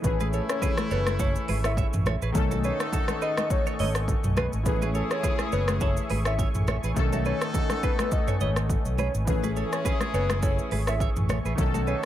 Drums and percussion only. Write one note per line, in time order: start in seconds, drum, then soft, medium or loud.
0.04 kick loud
0.04 low conga medium
0.04 shaker medium
0.20 high conga medium
0.20 shaker medium
0.33 shaker soft
0.49 cross-stick loud
0.49 shaker medium
0.62 kick loud
0.62 low conga medium
0.62 shaker medium
0.77 cross-stick loud
0.77 high conga medium
0.77 shaker medium
0.91 shaker soft
1.07 cross-stick loud
1.07 high conga medium
1.07 shaker medium
1.19 kick loud
1.19 shaker medium
1.36 shaker medium
1.48 open hi-hat medium
1.48 high conga medium
1.64 cross-stick loud
1.64 shaker medium
1.77 kick loud
1.77 shaker medium
1.93 mid tom loud
1.93 shaker medium
2.06 cross-stick medium
2.06 high conga medium
2.06 low conga medium
2.06 shaker soft
2.22 shaker medium
2.35 kick loud
2.35 low conga medium
2.35 shaker medium
2.51 high conga medium
2.51 shaker medium
2.64 shaker soft
2.80 cross-stick medium
2.80 shaker medium
2.93 kick medium
2.93 low conga medium
2.93 shaker medium
3.08 cross-stick loud
3.08 high conga medium
3.08 shaker medium
3.22 shaker medium
3.37 cross-stick loud
3.37 high conga medium
3.37 shaker medium
3.50 kick loud
3.50 shaker medium
3.67 shaker medium
3.79 open hi-hat medium
3.79 high conga medium
3.95 cross-stick loud
3.95 shaker medium
4.08 kick loud
4.08 shaker medium
4.24 mid tom loud
4.24 shaker medium
4.37 cross-stick loud
4.37 high conga medium
4.37 low conga medium
4.37 shaker soft
4.53 shaker medium
4.66 kick loud
4.66 low conga medium
4.66 shaker medium
4.82 high conga medium
4.82 shaker medium
4.95 shaker soft
5.11 cross-stick medium
5.11 shaker medium
5.23 kick medium
5.23 low conga medium
5.23 shaker medium
5.39 cross-stick medium
5.39 high conga medium
5.39 shaker medium
5.52 shaker medium
5.68 cross-stick loud
5.68 high conga medium
5.68 shaker soft
5.81 kick loud
5.81 shaker medium
5.97 shaker medium
6.10 open hi-hat medium
6.10 high conga medium
6.25 cross-stick loud
6.25 shaker medium
6.39 kick loud
6.39 shaker medium
6.54 mid tom loud
6.54 shaker medium
6.67 cross-stick loud
6.67 high conga medium
6.67 low conga medium
6.67 shaker soft
6.83 shaker medium
6.96 kick loud
6.96 low conga medium
6.96 shaker medium
7.12 high conga medium
7.12 shaker medium
7.25 shaker soft
7.41 cross-stick loud
7.41 shaker medium
7.54 kick loud
7.54 low conga medium
7.54 shaker medium
7.70 cross-stick medium
7.70 high conga medium
7.70 shaker medium
7.83 kick loud
7.83 shaker soft
7.99 cross-stick loud
7.99 high conga medium
7.99 shaker soft
8.12 kick loud
8.12 shaker medium
8.28 mid tom loud
8.28 shaker medium
8.40 high conga medium
8.40 shaker medium
8.56 cross-stick loud
8.56 shaker medium
8.70 kick loud
8.70 shaker medium
8.85 shaker medium
8.98 high conga medium
8.98 low conga medium
8.98 shaker soft
9.14 shaker medium
9.27 kick loud
9.27 low conga medium
9.27 shaker medium
9.43 high conga medium
9.43 shaker medium
9.56 shaker soft
9.73 cross-stick medium
9.73 shaker medium
9.85 kick medium
9.85 low conga medium
9.85 shaker medium
10.01 cross-stick medium
10.01 high conga medium
10.01 shaker medium
10.14 shaker soft
10.30 cross-stick loud
10.30 high conga medium
10.30 shaker medium
10.43 kick loud
10.43 shaker medium
10.59 shaker medium
10.71 open hi-hat medium
10.71 high conga medium
10.87 cross-stick loud
10.87 shaker medium
11.00 kick loud
11.00 shaker medium
11.16 mid tom loud
11.16 shaker medium
11.29 cross-stick medium
11.29 high conga medium
11.29 low conga medium
11.29 shaker soft
11.45 shaker medium
11.58 kick loud
11.58 low conga medium
11.58 shaker medium
11.74 high conga medium
11.74 shaker medium
11.87 shaker soft